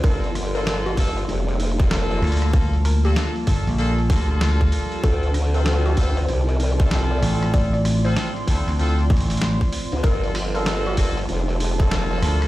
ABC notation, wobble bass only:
X:1
M:4/4
L:1/16
Q:"Swing 16ths" 1/4=96
K:Gdor
V:1 name="Wobble bass" clef=bass
G,,,6 G,,,2 F,,,6 z2 | z16 | D,,6 D,,2 C,,6 z2 | z12 z3 D,, |
G,,,6 G,,,2 F,,,6 z2 |]